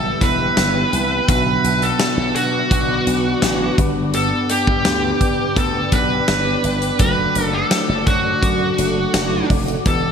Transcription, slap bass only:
Already playing: B1
0.21 E1
0.57 G1
0.93 C2
1.29 B1
1.64 B1
2.17 B1
2.35 B2
2.71 B1
3.07 B1
3.42 A1
3.78 G1
4.67 G2
4.85 D2
5.56 D2
5.92 B1
6.28 G1
6.64 G1
7.00 F#1
7.36 F#1
7.89 F#1
8.07 F#2
8.42 F#2
8.78 F#1
9.14 F#1
9.50 F1
9.86 E1

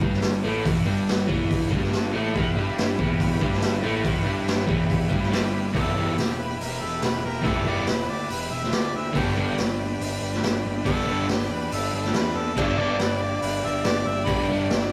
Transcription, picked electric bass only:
0.02 G1
0.45 A1
0.66 E1
0.85 G1
1.30 E1
1.72 G1
2.15 A1
2.36 E1
2.56 G1
2.99 E1
3.41 G1
3.84 A1
4.05 E1
4.25 G1
4.69 E1
5.11 G1
5.33 G1
5.75 E1
5.97 E1
6.18 E1
6.61 E1
6.81 E1
7.02 E1
7.23 E1
7.45 E1
7.88 E1
8.08 D2
8.30 E1
8.51 E1
8.72 D2
8.94 D2
9.15 G1
9.38 G1
9.58 G1
10.00 G1
10.21 G1
10.43 G1
10.65 G1
10.86 G1
11.29 G1
11.50 E2
11.72 G1
11.93 G1
12.14 E2
12.35 E2
12.57 G1
12.78 G1
13.00 G1
13.42 G1
13.64 G1
13.85 G1
14.05 G1
14.28 G1
14.70 G1

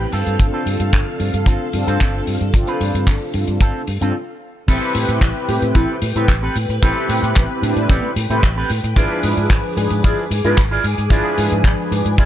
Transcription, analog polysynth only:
Already playing: C4 E4 G4 B4
0.39 C4 D4 F4 A4
1.73 C4 D4 F4 A4
2.53 C4 D4 F4 A4
4.01 C4 D4 F4 A4
4.67 C4 E4 G4 B4
6.15 C4 E4 G4 B4
6.82 C4 E4 G4 B4
8.30 C4 E4 G4 B4
8.96 F3 D4 G#4 B4
10.44 D4 F4 G#4 B4
11.10 F3 D4 G#4 B4

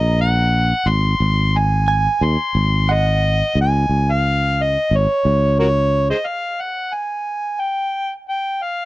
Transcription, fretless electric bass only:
Already playing: A#1
0.86 G#1
1.20 G#1
2.21 D#2
2.55 G#1
3.55 C#2
3.89 C#2
4.91 G#1
5.25 C#2

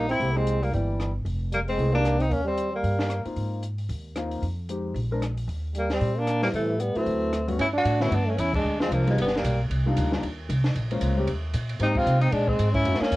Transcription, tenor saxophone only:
0.11 E4
0.37 C4
0.63 A#3
0.74 G3
1.54 A#3
1.69 C4
1.95 D4
2.22 D#4
2.32 C#4
2.47 C4
2.75 A#3
5.78 A#3
5.94 C4
6.19 D4
6.43 A#3
6.55 A3
6.81 B3
6.97 C4
7.61 E4
7.78 F#4
8.02 E4
8.14 D4
8.29 C#4
8.40 E4
8.55 D4
8.82 C4
8.93 A#3
9.10 G#3
9.22 B3
9.37 A#3
11.83 D#4
11.98 F4
12.21 D#4
12.33 D4
12.48 C4
12.75 E4
13.01 C#4

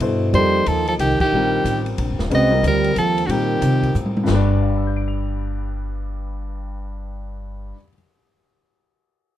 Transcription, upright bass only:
0.00 G2
0.33 F2
0.67 D#2
0.99 C2
1.20 muted upright bass stroke
1.32 A#1
1.65 A1
1.98 A#1
2.10 F1
2.19 D#1
2.31 C2
2.63 D2
2.96 D#2
3.29 A#2
3.61 C3
3.95 A2
4.28 G1

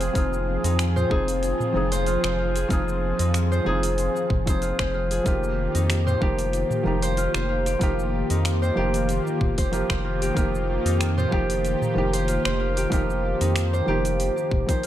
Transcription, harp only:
Already playing: D#4 F4 C5
0.01 G#4
0.15 F4
0.64 D#4
0.96 C5
1.11 G#4
1.92 C5
2.07 F4
2.24 C5
2.39 F4
2.56 G#4
2.71 F4
3.20 D#4
3.52 C5
3.66 G#4
4.47 C5
4.62 F4
4.79 C5
4.94 F4
5.11 G#4
5.26 F4
5.75 D#4
6.07 C5
6.22 G4
7.03 C5
7.17 F4
7.34 C5
7.49 F4
7.67 G4
7.81 F4
8.30 D#4
8.62 C5
8.77 G4
9.58 C5
9.73 F4
9.90 C5
10.05 F4
10.22 G4
10.36 F4
10.86 D#4
11.18 C5
11.32 G4
12.13 C5
12.28 F4
12.45 C5
12.60 F4
12.77 G4
12.92 F4
13.41 D#4
13.73 C5
13.88 G4
14.69 C5
14.84 F4

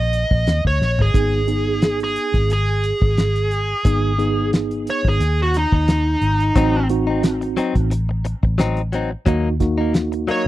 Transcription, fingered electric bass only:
Already playing: A#1
0.31 A#1
0.47 D#2
0.65 D2
0.80 A#1
0.99 G#1
1.14 G#1
2.34 G#1
3.02 G#1
3.85 G#1
5.05 G#1
5.20 D#2
5.72 D#2
6.21 G#1
6.56 A1
7.76 A1
8.43 A1
9.27 D#2

